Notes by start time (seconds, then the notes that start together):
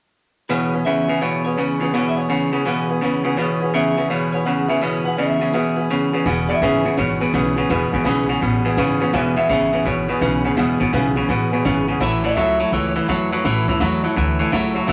0.49 E2 B2 C#3 E3 B3 C#4 G#4 B4 C#5
0.73 B3 C#4 G#4 B4
0.85 E2 C#3 B3 C#4 G#4 B4 E5
1.08 E2 C#3 B3 C#4 G#4 B4
1.21 E2 B2 C#3 E3 B3 C#4 G#4 B4 C#5
1.44 B3 C#4 G#4 B4 C#5
1.57 E2 C#3 B3 C#4 G#4 B4
1.80 E2 C#3 B3 C#4 G#4 B4
1.93 E2 B2 C#3 E3 B3 C#4 G#4 B4 C#5
2.09 E5
2.17 B3 C#4 G#4 B4 C#5
2.29 E2 C#3 B3 C#4 G#4 B4
2.52 E2 C#3 B3 C#4 G#4 B4
2.65 E2 B2 C#3 E3 B3 C#4 G#4 B4
2.89 B3 C#4 G#4 B4
3.01 E2 C#3 B3 C#4 G#4 B4
3.24 E2 C#3 B3 C#4 G#4 B4
3.37 E2 B2 C#3 E3 B3 C#4 G#4 B4 C#5
3.60 B3 C#4 G#4 B4
3.73 E2 C#3 B3 C#4 G#4 B4 E5
3.96 E2 C#3 B3 C#4 G#4 B4
4.10 E2 B2 C#3 E3 B3 C#4 G#4 B4 C#5
4.32 B3 C#4 G#4 B4 C#5
4.45 E2 C#3 B3 C#4 G#4 B4 F#5
4.68 E2 C#3 B3 C#4 G#4 B4 E5
4.81 E2 B2 C#3 E3 B3 C#4 G#4 B4 C#5
5.04 B3 C#4 G#4 B4 F#5
5.16 E2 C#3 B3 C#4 G#4 B4 E5
5.40 E2 C#3 B3 C#4 G#4 B4
5.52 E2 B2 C#3 E3 B3 C#4 G#4 B4
5.76 B3 C#4 G#4 B4
5.89 E2 C#3 B3 C#4 G#4 B4
6.12 E2 C#3 B3 C#4 G#4 B4
6.25 E1 E2 B2 C#3 E3 B3 C#4 G#4 B4
6.48 E2 B2 B3 C#4 G#4 B4 E5
6.61 G#1 E2 C#3 E3 B3 C#4 G#4 B4
6.85 E2 C#3 B3 C#4 G#4 B4
6.97 G#1 E2 B2 B3 C#4 G#4 B4 C#5
7.20 E2 B2 B3 C#4 G#4 B4
7.33 B1 E2 C#3 E3 B3 C#4 G#4 B4
7.56 E2 C#3 B3 C#4 G#4 B4
7.69 E1 E2 B2 C#3 E3 B3 C#4 G#4 B4
7.91 G#1 E2 B2 B3 C#4 G#4 B4
8.04 B1 E2 C#3 E3 B3 C#4 G#4 B4
8.28 E2 C#3 B3 C#4 G#4 B4
8.41 A1 E2 B2 B3 C#4 G#4 B4
8.64 E2 B2 B3 C#4 G#4 B4
8.77 G#1 E2 C#3 E3 B3 C#4 G#4 B4
9.00 E2 C#3 B3 C#4 G#4 B4
9.13 E1 E2 B2 C#3 E3 B3 C#4 G#4 B4
9.36 E2 B2 B3 C#4 G#4 B4 E5
9.49 G#1 E2 C#3 E3 B3 C#4 G#4 B4
9.72 E2 C#3 B3 C#4 G#4 B4
9.85 G#1 E2 B2 B3 C#4 G#4 B4 C#5
10.08 E2 B2 B3 C#4 G#4 B4
10.21 B1 E2 C#3 E3 B3 C#4 G#4 B4
10.44 E2 C#3 B3 C#4 G#4 B4
10.56 E1 E2 B2 C#3 E3 B3 C#4 G#4 B4
10.80 G#1 E2 B2 B3 C#4 G#4 B4
10.93 B1 E2 C#3 E3 B3 C#4 G#4 B4
11.15 E2 C#3 B3 C#4 G#4 B4
11.28 A1 E2 B2 B3 C#4 G#4 B4
11.51 E2 B2 B3 C#4 G#4 B4
11.65 G#1 E2 C#3 E3 B3 C#4 G#4 B4
11.87 E2 C#3 B3 C#4 G#4 B4
12.00 A1 A2 E3 F#3 A3 E4 A4 C#5
12.23 A2 E3 E4 A4 C#5 E5
12.36 C#2 A2 F#3 A3 E4 A4 C#5
12.59 A2 F#3 E4 A4 C#5
12.71 C#2 A2 E3 F#3 E4 A4 C#5
12.88 C#5
12.95 A2 E3 E4 A4 B4 C#5
13.07 E2 A2 F#3 A3 E4 A4 C#5
13.31 A2 F#3 E4 A4 B4 C#5
13.44 A1 A2 E3 F#3 A3 E4 A4 C#5
13.68 C#2 A2 E3 E4 A4 C#5
13.80 E2 A2 F#3 A3 E4 A4 C#5
14.03 A2 F#3 E4 A4 C#5
14.16 D2 A2 E3 F#3 E4 A4 C#5
14.39 A2 E3 E4 A4 C#5
14.52 C#2 A2 F#3 A3 E4 A4 C#5
14.75 A2 F#3 E4 A4 C#5
14.87 A1 A2 E3 F#3 A3 E4 A4 C#5